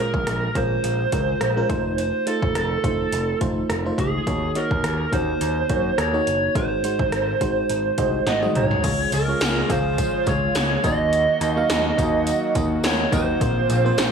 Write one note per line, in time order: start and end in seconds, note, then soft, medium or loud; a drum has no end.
0.00 0.52 A#2 medium
0.00 0.55 G#3 medium
0.00 0.62 C#4 medium
0.00 0.56 F4 medium
0.00 0.56 A#4 medium
0.14 0.23 A#1 medium
0.14 kick medium
0.27 0.47 A#1 medium
0.27 cross-stick loud
0.27 closed hi-hat medium
0.55 0.76 A#1 medium
0.55 1.03 G#3 medium
0.55 0.62 C4 soft
0.55 1.04 F4 medium
0.55 1.04 A#4 medium
0.55 1.98 C5 medium
0.55 kick medium
0.55 closed hi-hat medium
0.62 1.07 C#4 medium
0.84 1.05 A#1 medium
0.84 closed hi-hat medium
1.12 1.33 C#2 medium
1.12 1.49 G#3 medium
1.12 1.49 C#4 medium
1.12 1.49 F4 medium
1.12 1.49 A#4 medium
1.12 kick medium
1.12 closed hi-hat medium
1.41 1.62 A#1 medium
1.41 cross-stick loud
1.41 closed hi-hat medium
1.56 1.69 G#3 medium
1.56 1.70 C#4 medium
1.56 1.69 F4 medium
1.56 1.70 A#4 medium
1.69 2.11 F1 medium
1.69 2.18 A3 medium
1.69 2.18 D#4 medium
1.69 2.18 F4 medium
1.69 2.18 C5 medium
1.69 kick medium
1.69 closed hi-hat medium
1.98 2.28 C5 medium
1.98 closed hi-hat medium
2.27 2.75 A3 medium
2.27 2.75 D#4 medium
2.27 2.75 F4 medium
2.27 2.56 A4 medium
2.27 2.75 C5 medium
2.27 closed hi-hat medium
2.42 2.52 F1 medium
2.42 kick medium
2.55 2.76 F1 medium
2.55 3.38 A4 medium
2.55 cross-stick loud
2.55 closed hi-hat medium
2.84 3.04 F1 medium
2.84 3.32 A3 medium
2.84 3.32 D#4 medium
2.84 3.32 F4 medium
2.84 3.33 C5 medium
2.84 kick medium
2.84 closed hi-hat medium
3.12 3.33 F1 medium
3.12 closed hi-hat medium
3.41 3.62 F1 medium
3.41 3.77 A3 medium
3.41 3.77 D#4 medium
3.41 3.77 F4 medium
3.41 3.78 C5 medium
3.41 kick medium
3.41 closed hi-hat medium
3.69 3.90 F1 loud
3.69 cross-stick loud
3.69 closed hi-hat medium
3.85 4.20 A3 medium
3.85 4.20 D#4 medium
3.85 4.20 F4 medium
3.85 4.21 C5 medium
3.98 4.19 C#2 medium
3.98 4.58 G#4 medium
3.98 kick medium
3.98 closed hi-hat medium
4.26 4.47 D#2 medium
4.26 5.09 D#3 medium
4.26 4.51 A#3 medium
4.26 4.51 D#4 medium
4.26 4.51 F#4 medium
4.26 4.51 C#5 medium
4.26 kick medium
4.26 closed hi-hat medium
4.55 5.03 A#3 medium
4.55 5.04 D#4 medium
4.55 5.04 F#4 medium
4.55 5.09 A#4 medium
4.55 5.04 C#5 medium
4.55 closed hi-hat medium
4.71 4.80 D#2 medium
4.71 kick medium
4.84 5.05 D#2 medium
4.84 cross-stick loud
4.84 closed hi-hat medium
5.12 5.33 D#2 medium
5.12 5.60 A#3 medium
5.12 5.61 C#4 medium
5.12 5.61 D#4 medium
5.12 5.61 F#4 medium
5.12 5.99 C5 medium
5.12 kick medium
5.12 closed hi-hat medium
5.41 5.62 D#2 medium
5.41 closed hi-hat medium
5.69 5.90 F#2 medium
5.69 6.05 A#3 medium
5.69 6.06 D#4 medium
5.69 6.06 F#4 medium
5.69 6.06 C#5 medium
5.69 kick medium
5.69 closed hi-hat medium
5.98 6.19 D#2 medium
5.98 6.56 C#5 loud
5.98 cross-stick loud
5.98 closed hi-hat medium
6.13 6.48 A#3 medium
6.13 6.49 D#4 medium
6.13 6.49 F#4 medium
6.13 6.49 C#5 medium
6.27 6.48 F#1 medium
6.27 closed hi-hat medium
6.55 6.76 G#1 medium
6.55 7.37 G#2 medium
6.55 6.79 G#3 medium
6.55 6.79 D#4 medium
6.55 6.80 F#4 medium
6.55 6.80 C5 medium
6.55 8.52 C5 medium
6.55 kick loud
6.55 closed hi-hat medium
6.84 7.32 G#3 medium
6.84 7.32 D#4 medium
6.84 7.32 F#4 medium
6.84 7.33 C5 medium
6.84 closed hi-hat medium
6.99 7.09 G#1 medium
6.99 kick medium
7.12 7.33 G#1 medium
7.12 cross-stick loud
7.12 closed hi-hat medium
7.41 7.61 G#1 medium
7.41 7.89 G#3 medium
7.41 7.89 D#4 medium
7.41 7.90 F#4 medium
7.41 7.90 C5 medium
7.41 kick medium
7.41 closed hi-hat medium
7.69 7.90 G#1 medium
7.69 closed hi-hat medium
7.98 8.19 C2 medium
7.98 8.34 G#3 medium
7.98 8.34 D#4 medium
7.98 8.34 F#4 medium
7.98 8.35 C5 medium
7.98 8.25 D#5 medium
7.98 kick medium
7.98 closed hi-hat medium
8.27 8.47 G#1 loud
8.27 8.36 D#5 medium
8.27 8.54 F#5 medium
8.27 snare soft
8.27 closed hi-hat medium
8.42 8.77 G#3 medium
8.42 8.77 D#4 medium
8.42 8.78 F#4 medium
8.42 8.78 D#5 medium
8.42 high tom medium
8.55 8.76 C2 medium
8.55 9.14 C#5 medium
8.55 8.82 A#5 medium
8.55 closed hi-hat medium
8.55 mid tom medium
8.71 floor tom medium
8.83 9.04 C#2 medium
8.83 10.82 C#3 medium
8.83 9.66 C#3 medium
8.83 10.82 F3 medium
8.83 9.20 G#3 medium
8.83 10.82 G#3 medium
8.83 9.20 C#4 medium
8.83 10.82 F4 medium
8.83 9.20 F4 medium
8.83 9.21 C#5 medium
8.83 kick medium
8.83 closed hi-hat medium
8.83 crash medium
8.83 tambourine soft
9.12 9.33 C#2 medium
9.12 9.71 A#4 medium
9.12 closed hi-hat medium
9.12 tambourine soft
9.28 9.63 G#3 medium
9.28 9.63 C#4 medium
9.28 9.63 F4 medium
9.28 9.63 C#5 medium
9.41 9.61 C#2 medium
9.41 snare loud
9.41 closed hi-hat medium
9.41 tambourine medium
9.69 10.02 C#2 medium
9.69 10.18 G#3 medium
9.69 10.18 C#4 medium
9.69 10.18 F4 medium
9.69 10.29 C5 medium
9.69 10.18 F5 medium
9.69 kick medium
9.69 closed hi-hat medium
9.69 tambourine soft
9.98 kick medium
9.98 closed hi-hat medium
9.98 tambourine soft
10.26 10.48 C#2 medium
10.26 10.75 G#3 medium
10.26 10.75 C#4 medium
10.26 10.75 F4 medium
10.26 10.75 C#5 medium
10.26 10.81 C#5 medium
10.26 kick medium
10.26 closed hi-hat medium
10.26 tambourine soft
10.55 10.76 C#2 loud
10.55 snare loud
10.55 closed hi-hat medium
10.55 tambourine medium
10.84 11.25 D#2 medium
10.84 13.38 D#3 medium
10.84 11.66 D#3 medium
10.84 13.39 F#3 medium
10.84 11.43 A#3 medium
10.84 14.12 A#3 medium
10.84 11.43 D#4 medium
10.84 13.38 F#4 medium
10.84 11.43 F#4 medium
10.84 11.44 D#5 medium
10.84 12.53 D#5 medium
10.84 kick loud
10.84 closed hi-hat medium
10.84 tambourine soft
11.12 closed hi-hat medium
11.12 tambourine soft
11.41 11.62 D#2 loud
11.41 closed hi-hat medium
11.41 tambourine soft
11.56 11.91 A#3 medium
11.56 11.92 D#4 medium
11.56 11.92 F#4 medium
11.56 11.92 F5 loud
11.70 11.90 D#2 medium
11.70 snare loud
11.70 closed hi-hat medium
11.70 tambourine medium
11.98 12.30 D#2 loud
11.98 12.46 A#3 medium
11.98 12.47 D#4 medium
11.98 12.47 F#4 medium
11.98 12.47 D#5 medium
11.98 kick medium
11.98 closed hi-hat medium
11.98 tambourine soft
12.27 closed hi-hat medium
12.27 tambourine soft
12.55 12.76 D#2 medium
12.55 13.03 A#3 medium
12.55 13.04 D#4 medium
12.55 13.04 F#4 medium
12.55 13.04 D#5 medium
12.55 kick medium
12.55 closed hi-hat medium
12.55 tambourine soft
12.83 13.04 D#2 loud
12.83 13.13 C#5 medium
12.83 snare loud
12.83 closed hi-hat medium
12.83 tambourine medium
13.12 13.33 D#2 medium
13.12 13.36 A#3 medium
13.12 13.37 D#4 medium
13.12 13.37 F#4 medium
13.12 14.12 C5 medium
13.12 13.37 D#5 medium
13.12 kick medium
13.12 closed hi-hat medium
13.12 tambourine soft
13.41 13.62 A#1 loud
13.41 14.12 A#2 medium
13.41 14.12 C3 medium
13.41 14.12 F3 medium
13.41 13.77 A#3 medium
13.41 13.77 C4 medium
13.41 14.12 F4 medium
13.41 13.77 F4 medium
13.41 13.78 C5 medium
13.41 kick loud
13.41 closed hi-hat medium
13.69 13.90 A#1 loud
13.69 closed hi-hat medium
13.69 tambourine soft
13.85 14.12 A#3 medium
13.85 14.12 C4 medium
13.85 14.12 F4 medium
13.85 14.12 C5 loud
13.98 14.12 A#1 loud
13.98 snare loud
13.98 closed hi-hat medium
13.98 tambourine medium